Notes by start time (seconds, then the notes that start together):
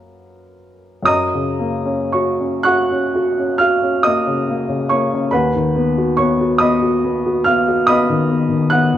Already playing: F#2 A#3 C#4 F#4 A#4
1.02 F#2 D#6
1.07 D#5 A#5
1.34 C#3
1.59 A#3
1.85 C#4
2.12 F#4 C#5 C#6
2.40 C#4
2.63 F#4 F#5 C#6 F#6
2.91 C#4
3.15 F#4
3.38 C#4
3.58 F#4 F5 F6
3.82 C#4
4.03 A#3 D#5 D#6
4.27 C#3
4.49 A#3
4.69 C#3
4.89 A#3 C#5 C#6
5.13 C#3
5.31 D#2 B4 F#5 B5
5.55 D#3
5.76 B3
5.98 F#4
6.17 B3 C#5 C#6
6.41 F#4
6.58 B3 D#5 B5 D#6
6.82 F#4
7.04 B3
7.26 F#4
7.44 B3 F5 F6
7.68 F#4
7.87 B3 D#5 B5 D#6
8.09 D#3
8.29 B3
8.49 D#3
8.70 B3 F#5 F#6
8.94 D#3